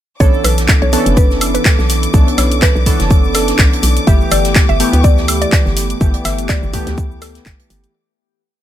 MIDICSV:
0, 0, Header, 1, 6, 480
1, 0, Start_track
1, 0, Key_signature, 2, "minor"
1, 0, Tempo, 483871
1, 201, Time_signature, 4, 2, 24, 8
1, 8555, End_track
2, 0, Start_track
2, 0, Title_t, "Violin section"
2, 0, Program_c, 0, 48
2, 200, Note_on_c, 0, 86, 84
2, 7891, Note_off_c, 0, 86, 0
2, 8555, End_track
3, 0, Start_track
3, 0, Title_t, "Synth pluck"
3, 0, Program_c, 1, 84
3, 200, Note_on_c, 1, 73, 107
3, 376, Note_off_c, 1, 73, 0
3, 440, Note_on_c, 1, 71, 96
3, 693, Note_off_c, 1, 71, 0
3, 813, Note_on_c, 1, 73, 94
3, 1064, Note_off_c, 1, 73, 0
3, 1159, Note_on_c, 1, 71, 95
3, 1413, Note_off_c, 1, 71, 0
3, 1533, Note_on_c, 1, 71, 93
3, 1858, Note_off_c, 1, 71, 0
3, 2361, Note_on_c, 1, 73, 93
3, 2536, Note_off_c, 1, 73, 0
3, 2601, Note_on_c, 1, 71, 99
3, 2853, Note_off_c, 1, 71, 0
3, 3321, Note_on_c, 1, 69, 93
3, 3955, Note_off_c, 1, 69, 0
3, 4040, Note_on_c, 1, 76, 101
3, 4216, Note_off_c, 1, 76, 0
3, 4281, Note_on_c, 1, 74, 103
3, 4534, Note_off_c, 1, 74, 0
3, 4653, Note_on_c, 1, 76, 99
3, 4904, Note_off_c, 1, 76, 0
3, 5000, Note_on_c, 1, 74, 94
3, 5253, Note_off_c, 1, 74, 0
3, 5372, Note_on_c, 1, 74, 93
3, 5698, Note_off_c, 1, 74, 0
3, 6200, Note_on_c, 1, 76, 92
3, 6376, Note_off_c, 1, 76, 0
3, 6440, Note_on_c, 1, 74, 103
3, 6693, Note_off_c, 1, 74, 0
3, 7160, Note_on_c, 1, 69, 91
3, 7795, Note_off_c, 1, 69, 0
3, 8555, End_track
4, 0, Start_track
4, 0, Title_t, "Synth keys"
4, 0, Program_c, 2, 88
4, 199, Note_on_c, 2, 52, 79
4, 200, Note_on_c, 2, 59, 73
4, 200, Note_on_c, 2, 61, 76
4, 201, Note_on_c, 2, 62, 74
4, 202, Note_on_c, 2, 69, 93
4, 894, Note_off_c, 2, 52, 0
4, 895, Note_off_c, 2, 59, 0
4, 895, Note_off_c, 2, 61, 0
4, 895, Note_off_c, 2, 62, 0
4, 896, Note_off_c, 2, 69, 0
4, 919, Note_on_c, 2, 52, 90
4, 920, Note_on_c, 2, 59, 88
4, 920, Note_on_c, 2, 61, 86
4, 921, Note_on_c, 2, 62, 82
4, 921, Note_on_c, 2, 69, 97
4, 2095, Note_off_c, 2, 52, 0
4, 2095, Note_off_c, 2, 59, 0
4, 2095, Note_off_c, 2, 61, 0
4, 2095, Note_off_c, 2, 62, 0
4, 2096, Note_off_c, 2, 69, 0
4, 2120, Note_on_c, 2, 52, 85
4, 2120, Note_on_c, 2, 59, 78
4, 2121, Note_on_c, 2, 61, 74
4, 2122, Note_on_c, 2, 62, 77
4, 2122, Note_on_c, 2, 69, 86
4, 2815, Note_off_c, 2, 52, 0
4, 2815, Note_off_c, 2, 59, 0
4, 2815, Note_off_c, 2, 61, 0
4, 2816, Note_off_c, 2, 62, 0
4, 2816, Note_off_c, 2, 69, 0
4, 2839, Note_on_c, 2, 52, 91
4, 2840, Note_on_c, 2, 59, 84
4, 2841, Note_on_c, 2, 61, 85
4, 2841, Note_on_c, 2, 62, 87
4, 2841, Note_on_c, 2, 69, 104
4, 4014, Note_off_c, 2, 52, 0
4, 4015, Note_off_c, 2, 59, 0
4, 4015, Note_off_c, 2, 61, 0
4, 4015, Note_off_c, 2, 62, 0
4, 4015, Note_off_c, 2, 69, 0
4, 4039, Note_on_c, 2, 52, 82
4, 4040, Note_on_c, 2, 57, 76
4, 4041, Note_on_c, 2, 59, 75
4, 4041, Note_on_c, 2, 67, 95
4, 4734, Note_off_c, 2, 52, 0
4, 4735, Note_off_c, 2, 57, 0
4, 4735, Note_off_c, 2, 59, 0
4, 4736, Note_off_c, 2, 67, 0
4, 4759, Note_on_c, 2, 52, 95
4, 4760, Note_on_c, 2, 57, 85
4, 4761, Note_on_c, 2, 59, 88
4, 4762, Note_on_c, 2, 67, 101
4, 5934, Note_off_c, 2, 52, 0
4, 5935, Note_off_c, 2, 57, 0
4, 5935, Note_off_c, 2, 59, 0
4, 5936, Note_off_c, 2, 67, 0
4, 5960, Note_on_c, 2, 52, 84
4, 5961, Note_on_c, 2, 57, 74
4, 5962, Note_on_c, 2, 59, 79
4, 5962, Note_on_c, 2, 67, 90
4, 6655, Note_off_c, 2, 52, 0
4, 6655, Note_off_c, 2, 57, 0
4, 6656, Note_off_c, 2, 59, 0
4, 6656, Note_off_c, 2, 67, 0
4, 6679, Note_on_c, 2, 52, 89
4, 6680, Note_on_c, 2, 57, 88
4, 6680, Note_on_c, 2, 59, 86
4, 6681, Note_on_c, 2, 67, 103
4, 7854, Note_off_c, 2, 52, 0
4, 7855, Note_off_c, 2, 57, 0
4, 7855, Note_off_c, 2, 59, 0
4, 7855, Note_off_c, 2, 67, 0
4, 8555, End_track
5, 0, Start_track
5, 0, Title_t, "FM bass"
5, 0, Program_c, 3, 39
5, 201, Note_on_c, 3, 35, 105
5, 361, Note_off_c, 3, 35, 0
5, 441, Note_on_c, 3, 35, 82
5, 734, Note_off_c, 3, 35, 0
5, 813, Note_on_c, 3, 35, 99
5, 954, Note_off_c, 3, 35, 0
5, 1053, Note_on_c, 3, 30, 95
5, 1576, Note_off_c, 3, 30, 0
5, 1774, Note_on_c, 3, 35, 90
5, 2057, Note_off_c, 3, 35, 0
5, 2121, Note_on_c, 3, 35, 103
5, 2281, Note_off_c, 3, 35, 0
5, 2361, Note_on_c, 3, 35, 83
5, 2654, Note_off_c, 3, 35, 0
5, 2733, Note_on_c, 3, 35, 104
5, 2874, Note_off_c, 3, 35, 0
5, 2973, Note_on_c, 3, 30, 96
5, 3496, Note_off_c, 3, 30, 0
5, 3561, Note_on_c, 3, 35, 79
5, 3644, Note_off_c, 3, 35, 0
5, 3801, Note_on_c, 3, 35, 97
5, 3960, Note_off_c, 3, 35, 0
5, 4041, Note_on_c, 3, 31, 107
5, 4200, Note_off_c, 3, 31, 0
5, 4280, Note_on_c, 3, 31, 81
5, 4574, Note_off_c, 3, 31, 0
5, 4653, Note_on_c, 3, 31, 95
5, 4794, Note_off_c, 3, 31, 0
5, 4893, Note_on_c, 3, 38, 95
5, 5416, Note_off_c, 3, 38, 0
5, 5614, Note_on_c, 3, 31, 91
5, 5897, Note_off_c, 3, 31, 0
5, 5961, Note_on_c, 3, 31, 106
5, 6120, Note_off_c, 3, 31, 0
5, 6200, Note_on_c, 3, 31, 81
5, 6494, Note_off_c, 3, 31, 0
5, 6574, Note_on_c, 3, 31, 100
5, 6714, Note_off_c, 3, 31, 0
5, 6813, Note_on_c, 3, 38, 102
5, 7336, Note_off_c, 3, 38, 0
5, 7401, Note_on_c, 3, 31, 81
5, 7484, Note_off_c, 3, 31, 0
5, 7641, Note_on_c, 3, 31, 101
5, 7800, Note_off_c, 3, 31, 0
5, 8555, End_track
6, 0, Start_track
6, 0, Title_t, "Drums"
6, 201, Note_on_c, 9, 36, 125
6, 201, Note_on_c, 9, 42, 52
6, 203, Note_on_c, 9, 82, 43
6, 207, Note_off_c, 9, 82, 0
6, 207, Note_on_c, 9, 82, 81
6, 300, Note_off_c, 9, 36, 0
6, 300, Note_off_c, 9, 42, 0
6, 306, Note_off_c, 9, 82, 0
6, 336, Note_on_c, 9, 82, 23
6, 435, Note_off_c, 9, 82, 0
6, 441, Note_on_c, 9, 46, 103
6, 441, Note_on_c, 9, 76, 70
6, 441, Note_on_c, 9, 82, 69
6, 443, Note_off_c, 9, 82, 0
6, 443, Note_on_c, 9, 82, 75
6, 541, Note_off_c, 9, 46, 0
6, 541, Note_off_c, 9, 76, 0
6, 542, Note_off_c, 9, 82, 0
6, 575, Note_on_c, 9, 38, 53
6, 575, Note_on_c, 9, 42, 70
6, 577, Note_on_c, 9, 82, 36
6, 674, Note_off_c, 9, 38, 0
6, 674, Note_off_c, 9, 42, 0
6, 675, Note_on_c, 9, 38, 115
6, 676, Note_off_c, 9, 82, 0
6, 678, Note_on_c, 9, 39, 124
6, 679, Note_on_c, 9, 82, 80
6, 681, Note_on_c, 9, 36, 116
6, 681, Note_on_c, 9, 42, 55
6, 683, Note_off_c, 9, 82, 0
6, 683, Note_on_c, 9, 82, 43
6, 774, Note_off_c, 9, 38, 0
6, 777, Note_off_c, 9, 39, 0
6, 780, Note_off_c, 9, 36, 0
6, 781, Note_off_c, 9, 42, 0
6, 782, Note_off_c, 9, 82, 0
6, 817, Note_on_c, 9, 82, 23
6, 916, Note_off_c, 9, 82, 0
6, 920, Note_on_c, 9, 82, 72
6, 922, Note_on_c, 9, 46, 98
6, 923, Note_off_c, 9, 82, 0
6, 923, Note_on_c, 9, 82, 79
6, 1021, Note_off_c, 9, 46, 0
6, 1023, Note_off_c, 9, 82, 0
6, 1055, Note_on_c, 9, 42, 71
6, 1056, Note_on_c, 9, 82, 34
6, 1154, Note_off_c, 9, 42, 0
6, 1156, Note_off_c, 9, 82, 0
6, 1161, Note_on_c, 9, 36, 119
6, 1161, Note_on_c, 9, 42, 53
6, 1161, Note_on_c, 9, 82, 94
6, 1163, Note_off_c, 9, 82, 0
6, 1163, Note_on_c, 9, 82, 45
6, 1260, Note_off_c, 9, 36, 0
6, 1261, Note_off_c, 9, 42, 0
6, 1262, Note_off_c, 9, 82, 0
6, 1294, Note_on_c, 9, 38, 41
6, 1297, Note_on_c, 9, 82, 22
6, 1393, Note_off_c, 9, 38, 0
6, 1396, Note_off_c, 9, 82, 0
6, 1401, Note_on_c, 9, 46, 109
6, 1401, Note_on_c, 9, 76, 71
6, 1403, Note_on_c, 9, 82, 79
6, 1406, Note_off_c, 9, 82, 0
6, 1406, Note_on_c, 9, 82, 79
6, 1500, Note_off_c, 9, 46, 0
6, 1500, Note_off_c, 9, 76, 0
6, 1505, Note_off_c, 9, 82, 0
6, 1535, Note_on_c, 9, 42, 68
6, 1537, Note_on_c, 9, 82, 34
6, 1635, Note_off_c, 9, 42, 0
6, 1636, Note_off_c, 9, 82, 0
6, 1639, Note_on_c, 9, 38, 116
6, 1639, Note_on_c, 9, 39, 124
6, 1641, Note_on_c, 9, 36, 118
6, 1642, Note_on_c, 9, 42, 53
6, 1642, Note_on_c, 9, 82, 83
6, 1644, Note_off_c, 9, 82, 0
6, 1644, Note_on_c, 9, 82, 45
6, 1738, Note_off_c, 9, 38, 0
6, 1738, Note_off_c, 9, 39, 0
6, 1740, Note_off_c, 9, 36, 0
6, 1742, Note_off_c, 9, 42, 0
6, 1743, Note_off_c, 9, 82, 0
6, 1776, Note_on_c, 9, 38, 54
6, 1778, Note_on_c, 9, 82, 23
6, 1875, Note_off_c, 9, 38, 0
6, 1877, Note_off_c, 9, 82, 0
6, 1879, Note_on_c, 9, 82, 75
6, 1881, Note_on_c, 9, 38, 41
6, 1882, Note_on_c, 9, 46, 108
6, 1884, Note_off_c, 9, 82, 0
6, 1884, Note_on_c, 9, 82, 84
6, 1980, Note_off_c, 9, 38, 0
6, 1981, Note_off_c, 9, 46, 0
6, 1983, Note_off_c, 9, 82, 0
6, 2015, Note_on_c, 9, 42, 68
6, 2017, Note_on_c, 9, 82, 32
6, 2114, Note_off_c, 9, 42, 0
6, 2116, Note_off_c, 9, 82, 0
6, 2121, Note_on_c, 9, 36, 124
6, 2122, Note_on_c, 9, 42, 50
6, 2122, Note_on_c, 9, 82, 88
6, 2124, Note_off_c, 9, 82, 0
6, 2124, Note_on_c, 9, 82, 43
6, 2220, Note_off_c, 9, 36, 0
6, 2222, Note_off_c, 9, 42, 0
6, 2223, Note_off_c, 9, 82, 0
6, 2257, Note_on_c, 9, 82, 23
6, 2261, Note_on_c, 9, 42, 49
6, 2356, Note_off_c, 9, 82, 0
6, 2360, Note_off_c, 9, 42, 0
6, 2360, Note_on_c, 9, 38, 52
6, 2361, Note_on_c, 9, 46, 104
6, 2361, Note_on_c, 9, 76, 75
6, 2363, Note_on_c, 9, 82, 73
6, 2364, Note_off_c, 9, 82, 0
6, 2364, Note_on_c, 9, 82, 71
6, 2459, Note_off_c, 9, 38, 0
6, 2461, Note_off_c, 9, 46, 0
6, 2461, Note_off_c, 9, 76, 0
6, 2464, Note_off_c, 9, 82, 0
6, 2495, Note_on_c, 9, 42, 69
6, 2497, Note_on_c, 9, 82, 31
6, 2594, Note_off_c, 9, 42, 0
6, 2596, Note_off_c, 9, 82, 0
6, 2598, Note_on_c, 9, 39, 122
6, 2601, Note_on_c, 9, 36, 122
6, 2602, Note_on_c, 9, 42, 53
6, 2602, Note_on_c, 9, 82, 92
6, 2604, Note_off_c, 9, 82, 0
6, 2604, Note_on_c, 9, 82, 43
6, 2608, Note_on_c, 9, 38, 111
6, 2698, Note_off_c, 9, 39, 0
6, 2700, Note_off_c, 9, 36, 0
6, 2701, Note_off_c, 9, 42, 0
6, 2703, Note_off_c, 9, 82, 0
6, 2707, Note_off_c, 9, 38, 0
6, 2736, Note_on_c, 9, 82, 20
6, 2835, Note_off_c, 9, 82, 0
6, 2841, Note_on_c, 9, 36, 63
6, 2841, Note_on_c, 9, 46, 108
6, 2842, Note_on_c, 9, 82, 74
6, 2846, Note_off_c, 9, 82, 0
6, 2846, Note_on_c, 9, 82, 66
6, 2940, Note_off_c, 9, 36, 0
6, 2940, Note_off_c, 9, 46, 0
6, 2945, Note_off_c, 9, 82, 0
6, 2974, Note_on_c, 9, 42, 69
6, 2975, Note_on_c, 9, 38, 57
6, 2976, Note_on_c, 9, 82, 32
6, 3073, Note_off_c, 9, 42, 0
6, 3074, Note_off_c, 9, 38, 0
6, 3075, Note_off_c, 9, 82, 0
6, 3081, Note_on_c, 9, 36, 127
6, 3081, Note_on_c, 9, 42, 53
6, 3081, Note_on_c, 9, 82, 79
6, 3083, Note_off_c, 9, 82, 0
6, 3083, Note_on_c, 9, 82, 43
6, 3180, Note_off_c, 9, 36, 0
6, 3180, Note_off_c, 9, 42, 0
6, 3182, Note_off_c, 9, 82, 0
6, 3215, Note_on_c, 9, 82, 21
6, 3314, Note_off_c, 9, 82, 0
6, 3316, Note_on_c, 9, 38, 55
6, 3319, Note_on_c, 9, 82, 74
6, 3320, Note_on_c, 9, 46, 110
6, 3320, Note_on_c, 9, 76, 72
6, 3322, Note_off_c, 9, 82, 0
6, 3322, Note_on_c, 9, 82, 74
6, 3416, Note_off_c, 9, 38, 0
6, 3419, Note_off_c, 9, 46, 0
6, 3419, Note_off_c, 9, 76, 0
6, 3421, Note_off_c, 9, 82, 0
6, 3449, Note_on_c, 9, 38, 58
6, 3453, Note_on_c, 9, 42, 67
6, 3455, Note_on_c, 9, 82, 33
6, 3548, Note_off_c, 9, 38, 0
6, 3552, Note_off_c, 9, 42, 0
6, 3554, Note_off_c, 9, 82, 0
6, 3557, Note_on_c, 9, 39, 127
6, 3557, Note_on_c, 9, 82, 87
6, 3560, Note_on_c, 9, 42, 53
6, 3561, Note_on_c, 9, 36, 119
6, 3562, Note_off_c, 9, 82, 0
6, 3562, Note_on_c, 9, 38, 124
6, 3562, Note_on_c, 9, 82, 43
6, 3656, Note_off_c, 9, 39, 0
6, 3660, Note_off_c, 9, 36, 0
6, 3660, Note_off_c, 9, 42, 0
6, 3661, Note_off_c, 9, 38, 0
6, 3661, Note_off_c, 9, 82, 0
6, 3695, Note_on_c, 9, 82, 22
6, 3702, Note_on_c, 9, 42, 52
6, 3794, Note_off_c, 9, 82, 0
6, 3798, Note_on_c, 9, 82, 75
6, 3801, Note_on_c, 9, 46, 110
6, 3802, Note_off_c, 9, 42, 0
6, 3803, Note_off_c, 9, 82, 0
6, 3803, Note_on_c, 9, 82, 80
6, 3900, Note_off_c, 9, 46, 0
6, 3902, Note_off_c, 9, 82, 0
6, 3934, Note_on_c, 9, 42, 63
6, 3936, Note_on_c, 9, 82, 33
6, 4033, Note_off_c, 9, 42, 0
6, 4035, Note_off_c, 9, 82, 0
6, 4041, Note_on_c, 9, 36, 127
6, 4041, Note_on_c, 9, 42, 51
6, 4042, Note_on_c, 9, 82, 41
6, 4047, Note_off_c, 9, 82, 0
6, 4047, Note_on_c, 9, 82, 81
6, 4140, Note_off_c, 9, 36, 0
6, 4140, Note_off_c, 9, 42, 0
6, 4146, Note_off_c, 9, 82, 0
6, 4176, Note_on_c, 9, 82, 23
6, 4275, Note_off_c, 9, 82, 0
6, 4276, Note_on_c, 9, 82, 67
6, 4281, Note_on_c, 9, 46, 107
6, 4281, Note_on_c, 9, 76, 77
6, 4283, Note_off_c, 9, 82, 0
6, 4283, Note_on_c, 9, 82, 77
6, 4380, Note_off_c, 9, 46, 0
6, 4380, Note_off_c, 9, 76, 0
6, 4382, Note_off_c, 9, 82, 0
6, 4406, Note_on_c, 9, 38, 53
6, 4414, Note_on_c, 9, 42, 69
6, 4415, Note_on_c, 9, 82, 32
6, 4505, Note_off_c, 9, 38, 0
6, 4513, Note_off_c, 9, 42, 0
6, 4514, Note_off_c, 9, 82, 0
6, 4517, Note_on_c, 9, 39, 126
6, 4521, Note_on_c, 9, 36, 127
6, 4521, Note_on_c, 9, 42, 51
6, 4521, Note_on_c, 9, 82, 87
6, 4522, Note_off_c, 9, 82, 0
6, 4522, Note_on_c, 9, 82, 43
6, 4527, Note_on_c, 9, 38, 117
6, 4616, Note_off_c, 9, 39, 0
6, 4620, Note_off_c, 9, 36, 0
6, 4620, Note_off_c, 9, 42, 0
6, 4622, Note_off_c, 9, 82, 0
6, 4626, Note_off_c, 9, 38, 0
6, 4656, Note_on_c, 9, 82, 22
6, 4755, Note_off_c, 9, 82, 0
6, 4762, Note_on_c, 9, 46, 109
6, 4763, Note_on_c, 9, 82, 71
6, 4861, Note_off_c, 9, 46, 0
6, 4862, Note_off_c, 9, 82, 0
6, 4895, Note_on_c, 9, 42, 61
6, 4896, Note_on_c, 9, 82, 33
6, 4994, Note_off_c, 9, 42, 0
6, 4996, Note_off_c, 9, 82, 0
6, 5000, Note_on_c, 9, 82, 81
6, 5001, Note_on_c, 9, 36, 127
6, 5002, Note_on_c, 9, 42, 54
6, 5004, Note_off_c, 9, 82, 0
6, 5004, Note_on_c, 9, 82, 42
6, 5100, Note_off_c, 9, 36, 0
6, 5101, Note_off_c, 9, 42, 0
6, 5103, Note_off_c, 9, 82, 0
6, 5132, Note_on_c, 9, 38, 43
6, 5137, Note_on_c, 9, 82, 21
6, 5231, Note_off_c, 9, 38, 0
6, 5236, Note_off_c, 9, 82, 0
6, 5241, Note_on_c, 9, 46, 105
6, 5241, Note_on_c, 9, 76, 76
6, 5243, Note_on_c, 9, 82, 75
6, 5247, Note_off_c, 9, 82, 0
6, 5247, Note_on_c, 9, 82, 77
6, 5340, Note_off_c, 9, 46, 0
6, 5340, Note_off_c, 9, 76, 0
6, 5347, Note_off_c, 9, 82, 0
6, 5374, Note_on_c, 9, 42, 63
6, 5375, Note_on_c, 9, 82, 31
6, 5473, Note_off_c, 9, 42, 0
6, 5475, Note_off_c, 9, 82, 0
6, 5478, Note_on_c, 9, 39, 127
6, 5481, Note_on_c, 9, 36, 127
6, 5481, Note_on_c, 9, 42, 52
6, 5482, Note_on_c, 9, 38, 126
6, 5483, Note_on_c, 9, 82, 42
6, 5492, Note_off_c, 9, 82, 0
6, 5492, Note_on_c, 9, 82, 95
6, 5577, Note_off_c, 9, 39, 0
6, 5580, Note_off_c, 9, 36, 0
6, 5581, Note_off_c, 9, 38, 0
6, 5581, Note_off_c, 9, 42, 0
6, 5591, Note_off_c, 9, 82, 0
6, 5616, Note_on_c, 9, 82, 23
6, 5619, Note_on_c, 9, 38, 49
6, 5715, Note_off_c, 9, 82, 0
6, 5718, Note_off_c, 9, 38, 0
6, 5720, Note_on_c, 9, 46, 116
6, 5721, Note_on_c, 9, 38, 49
6, 5722, Note_on_c, 9, 82, 79
6, 5730, Note_off_c, 9, 82, 0
6, 5730, Note_on_c, 9, 82, 78
6, 5819, Note_off_c, 9, 46, 0
6, 5820, Note_off_c, 9, 38, 0
6, 5829, Note_off_c, 9, 82, 0
6, 5853, Note_on_c, 9, 42, 64
6, 5855, Note_on_c, 9, 82, 31
6, 5953, Note_off_c, 9, 42, 0
6, 5954, Note_off_c, 9, 82, 0
6, 5960, Note_on_c, 9, 42, 47
6, 5961, Note_on_c, 9, 36, 126
6, 5962, Note_on_c, 9, 82, 43
6, 5967, Note_off_c, 9, 82, 0
6, 5967, Note_on_c, 9, 82, 86
6, 6060, Note_off_c, 9, 36, 0
6, 6060, Note_off_c, 9, 42, 0
6, 6066, Note_off_c, 9, 82, 0
6, 6088, Note_on_c, 9, 42, 48
6, 6095, Note_on_c, 9, 82, 23
6, 6187, Note_off_c, 9, 42, 0
6, 6195, Note_off_c, 9, 82, 0
6, 6201, Note_on_c, 9, 46, 106
6, 6201, Note_on_c, 9, 76, 80
6, 6201, Note_on_c, 9, 82, 69
6, 6202, Note_off_c, 9, 82, 0
6, 6202, Note_on_c, 9, 82, 72
6, 6204, Note_on_c, 9, 38, 54
6, 6300, Note_off_c, 9, 46, 0
6, 6300, Note_off_c, 9, 76, 0
6, 6302, Note_off_c, 9, 82, 0
6, 6304, Note_off_c, 9, 38, 0
6, 6333, Note_on_c, 9, 42, 62
6, 6335, Note_on_c, 9, 82, 33
6, 6433, Note_off_c, 9, 42, 0
6, 6434, Note_off_c, 9, 82, 0
6, 6437, Note_on_c, 9, 39, 111
6, 6438, Note_on_c, 9, 82, 86
6, 6441, Note_on_c, 9, 36, 120
6, 6441, Note_on_c, 9, 42, 50
6, 6442, Note_off_c, 9, 82, 0
6, 6442, Note_on_c, 9, 82, 43
6, 6443, Note_on_c, 9, 38, 113
6, 6537, Note_off_c, 9, 39, 0
6, 6540, Note_off_c, 9, 36, 0
6, 6540, Note_off_c, 9, 42, 0
6, 6542, Note_off_c, 9, 38, 0
6, 6542, Note_off_c, 9, 82, 0
6, 6575, Note_on_c, 9, 82, 22
6, 6675, Note_off_c, 9, 82, 0
6, 6681, Note_on_c, 9, 36, 64
6, 6681, Note_on_c, 9, 82, 60
6, 6682, Note_on_c, 9, 46, 108
6, 6683, Note_off_c, 9, 82, 0
6, 6683, Note_on_c, 9, 82, 73
6, 6780, Note_off_c, 9, 36, 0
6, 6781, Note_off_c, 9, 46, 0
6, 6783, Note_off_c, 9, 82, 0
6, 6809, Note_on_c, 9, 38, 58
6, 6814, Note_on_c, 9, 42, 65
6, 6816, Note_on_c, 9, 82, 34
6, 6909, Note_off_c, 9, 38, 0
6, 6913, Note_off_c, 9, 42, 0
6, 6915, Note_off_c, 9, 82, 0
6, 6921, Note_on_c, 9, 36, 123
6, 6921, Note_on_c, 9, 42, 49
6, 6923, Note_on_c, 9, 82, 42
6, 6924, Note_off_c, 9, 82, 0
6, 6924, Note_on_c, 9, 82, 91
6, 7020, Note_off_c, 9, 36, 0
6, 7020, Note_off_c, 9, 42, 0
6, 7023, Note_off_c, 9, 82, 0
6, 7056, Note_on_c, 9, 82, 20
6, 7155, Note_off_c, 9, 82, 0
6, 7160, Note_on_c, 9, 38, 51
6, 7160, Note_on_c, 9, 46, 102
6, 7160, Note_on_c, 9, 76, 77
6, 7162, Note_on_c, 9, 82, 77
6, 7259, Note_off_c, 9, 38, 0
6, 7259, Note_off_c, 9, 46, 0
6, 7259, Note_off_c, 9, 76, 0
6, 7261, Note_off_c, 9, 82, 0
6, 7294, Note_on_c, 9, 42, 64
6, 7295, Note_on_c, 9, 82, 32
6, 7298, Note_on_c, 9, 38, 64
6, 7393, Note_off_c, 9, 42, 0
6, 7395, Note_off_c, 9, 82, 0
6, 7397, Note_off_c, 9, 38, 0
6, 7398, Note_on_c, 9, 39, 123
6, 7401, Note_on_c, 9, 36, 121
6, 7401, Note_on_c, 9, 42, 51
6, 7403, Note_on_c, 9, 82, 45
6, 7405, Note_on_c, 9, 38, 127
6, 7497, Note_off_c, 9, 39, 0
6, 7500, Note_off_c, 9, 36, 0
6, 7501, Note_off_c, 9, 42, 0
6, 7502, Note_off_c, 9, 82, 0
6, 7504, Note_off_c, 9, 38, 0
6, 7533, Note_on_c, 9, 42, 49
6, 7536, Note_on_c, 9, 82, 22
6, 7632, Note_off_c, 9, 42, 0
6, 7635, Note_off_c, 9, 82, 0
6, 7641, Note_on_c, 9, 46, 114
6, 7643, Note_on_c, 9, 82, 71
6, 7740, Note_off_c, 9, 46, 0
6, 7742, Note_off_c, 9, 82, 0
6, 7774, Note_on_c, 9, 42, 59
6, 7776, Note_on_c, 9, 82, 31
6, 7873, Note_off_c, 9, 42, 0
6, 7875, Note_off_c, 9, 82, 0
6, 8555, End_track
0, 0, End_of_file